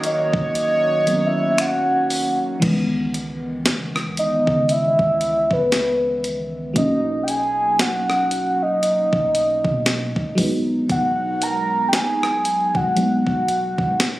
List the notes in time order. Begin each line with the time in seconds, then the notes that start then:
Already playing: D#1 D#3 F#3 A#3 C#4 F#4
0.03 C#5 D#5, closed hi-hat
0.34 D#1, kick
0.55 closed hi-hat
1.06 D#3 F#3 A#3 B3, closed hi-hat
1.15 C#4
1.26 E5
1.58 F#5, finger snap, closed hi-hat
2.10 open hi-hat
2.60 C#2 E3 G#3 B3, kick, closed hi-hat, crash
2.65 C#4
2.71 D#3
3.14 closed hi-hat
3.66 C#3, snare, closed hi-hat
3.96 cross-stick
4.07 C#2
4.17 D#5, closed hi-hat
4.47 C#3, kick
4.69 E5, closed hi-hat
4.99 C#2, kick
5.21 closed hi-hat
5.51 C#2 B4, kick
5.72 snare, closed hi-hat
6.24 closed hi-hat
6.74 B1 F#3 A#3 C#4 D#5, kick, closed hi-hat
6.79 D#4
7.23 G5
7.28 G#5, closed hi-hat
7.79 F#5, snare, closed hi-hat
8.10 cross-stick
8.31 closed hi-hat
8.62 D#5
8.83 closed hi-hat
9.13 B1, kick
9.35 closed hi-hat
9.65 B2, kick
9.86 snare, closed hi-hat
10.16 E1, kick
10.35 F#3 G#3 B3, kick, open hi-hat
10.40 D#4
10.89 E1 F#5, kick, closed hi-hat
11.42 A#5, closed hi-hat
11.89 G5
11.93 G#5, snare, closed hi-hat
12.23 cross-stick
12.45 closed hi-hat
12.75 E1 F#5, kick
12.95 F#3 G#3 B3 D#4, closed hi-hat
13.27 E1, kick
13.48 closed hi-hat
13.78 E1, kick
14.00 snare, closed hi-hat